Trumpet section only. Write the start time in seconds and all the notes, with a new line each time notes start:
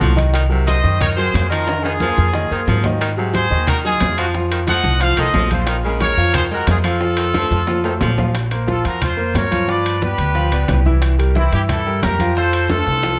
Already playing: D#4 F#4
0.67 C5 D#5
1.00 A#4 C#5
1.16 G#4 C5
1.49 F4 A#4
1.83 F4 G#4
3.35 G#4 C5
3.69 F#4 A#4
3.85 F4 G#4
4.20 D#4 F#4
4.68 D#5 F#5
5.02 C5 F5
5.19 C5 D#5
5.52 A4 C5
6.02 A#4 C#5
6.35 G#4 C5
6.52 F#4 A#4
6.69 F4 G#4
6.85 F4 A4
8.70 F4 A4
8.87 F#4 A#4
9.03 F4 C5
9.37 A#4 C#5
9.70 B4 D5
10.03 G4 B4
11.38 C4 E4
11.54 E4 G4
11.70 E4 A4
12.03 G4 A#4
12.36 A4 C5
12.70 F4 A4